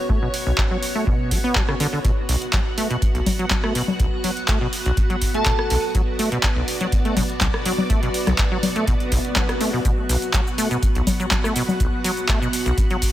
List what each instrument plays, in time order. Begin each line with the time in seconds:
Already playing: string machine B3 F#4 C#5
0.09 acid bass A3, kick
0.22 acid bass B2
0.34 open hi-hat
0.47 acid bass B1
0.58 kick, clap
0.71 acid bass F#3
0.83 open hi-hat
0.95 acid bass A3
1.07 acid bass B2, kick
1.31 acid bass F#3, kick, open hi-hat
1.44 acid bass B3
1.55 acid bass F#3, kick, clap
1.68 acid bass C#3, cross-stick
1.80 acid bass D3, open hi-hat
1.93 acid bass D3
2.04 acid bass B2, string machine F#5, kick, closed hi-hat
2.29 acid bass B1, open hi-hat
2.42 closed hi-hat
2.53 acid bass F#3, kick, clap, closed hi-hat
2.78 acid bass A3, open hi-hat
2.90 acid bass B2, closed hi-hat
3.02 kick, closed hi-hat
3.15 acid bass B1, closed hi-hat
3.26 kick, open hi-hat, low conga
3.39 acid bass F#3, closed hi-hat
3.50 kick, clap, closed hi-hat, low conga
3.64 acid bass A3, cross-stick
3.75 acid bass B2, open hi-hat
3.88 low conga
4.00 acid bass B1, kick, closed hi-hat
4.24 acid bass F#3, open hi-hat
4.37 closed hi-hat
4.48 acid bass A3, kick, clap, closed hi-hat
4.61 acid bass B2
4.73 open hi-hat
4.86 acid bass B1, closed hi-hat
4.97 kick, closed hi-hat
5.10 acid bass F#3, closed hi-hat
5.22 kick, open hi-hat
5.34 acid bass A3, digital synth lead A4, closed hi-hat
5.46 acid bass B2, kick, clap, closed hi-hat
5.59 cross-stick
5.70 acid bass B1, open hi-hat
5.95 acid bass F#3, string machine D5, kick, closed hi-hat
6.19 acid bass A3, open hi-hat
6.32 acid bass B2, closed hi-hat
6.43 kick, clap, closed hi-hat
6.56 acid bass B1
6.68 open hi-hat
6.81 acid bass F#3, closed hi-hat
6.92 kick, closed hi-hat
7.05 acid bass A3, closed hi-hat
7.17 acid bass B2, kick, open hi-hat, low conga
7.29 closed hi-hat
7.41 acid bass B1, kick, clap, closed hi-hat, low conga
7.54 cross-stick
7.65 acid bass F#3, open hi-hat
7.78 low conga
7.90 acid bass A3, kick, closed hi-hat
8.03 acid bass B2, closed hi-hat
8.14 open hi-hat
8.27 acid bass B1, cross-stick, closed hi-hat, low conga
8.38 kick, clap, closed hi-hat
8.51 acid bass F#3
8.63 open hi-hat, low conga
8.76 acid bass A3, closed hi-hat
8.87 acid bass B2, kick, closed hi-hat, swell
9.00 closed hi-hat
9.12 acid bass B1, kick, open hi-hat
9.25 closed hi-hat
9.36 acid bass F#3, kick, clap, closed hi-hat, low conga
9.49 cross-stick, closed hi-hat
9.61 acid bass A3, open hi-hat
9.73 acid bass B2
9.85 acid bass B2, string machine F#5, kick, closed hi-hat, cabasa
10.09 acid bass B1, open hi-hat, cabasa
10.22 closed hi-hat, cabasa
10.33 acid bass F#3, kick, clap, closed hi-hat, cabasa
10.47 cabasa
10.58 acid bass A3, open hi-hat, cabasa
10.71 acid bass B2, closed hi-hat, cabasa
10.83 kick, closed hi-hat, cabasa
10.95 acid bass B1, closed hi-hat
11.07 kick, open hi-hat, low conga, cabasa
11.20 acid bass F#3, closed hi-hat, cabasa
11.31 kick, clap, closed hi-hat, low conga, cabasa
11.44 acid bass A3, cross-stick, cabasa
11.56 acid bass B2, open hi-hat, cabasa
11.69 low conga, cabasa
11.80 acid bass B1, kick, closed hi-hat, cabasa
12.04 acid bass F#3, open hi-hat, cabasa
12.18 cabasa
12.29 acid bass A3, kick, clap, closed hi-hat, cabasa
12.42 acid bass B2, cabasa
12.53 open hi-hat, cabasa
12.66 acid bass B1, closed hi-hat, cabasa
12.78 kick, closed hi-hat, cabasa
12.90 acid bass F#3, closed hi-hat
13.02 kick, open hi-hat, cabasa